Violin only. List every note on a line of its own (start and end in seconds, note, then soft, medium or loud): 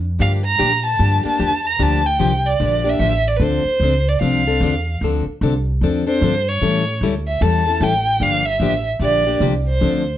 0.21 0.32 F5 medium
0.44 0.82 A#5 loud
0.86 1.23 A5 loud
1.26 1.68 A5 loud
1.66 1.84 A#5 medium
1.82 2.08 A5 loud
2.06 2.48 G5 loud
2.46 2.90 D5 medium
2.89 3.29 E5 loud
3.28 3.38 D5 medium
3.36 3.44 B4 medium
3.42 4.10 C5 medium
4.08 4.21 D5 medium
4.22 4.98 F5 medium
6.08 6.50 C5 medium
6.49 7.03 C#5 medium
7.27 7.44 E5 medium
7.42 7.85 A5 loud
7.83 8.24 G5 loud
8.23 8.47 F5 loud
8.45 8.86 E5 loud
9.01 9.39 D5 loud
9.68 10.05 C5 medium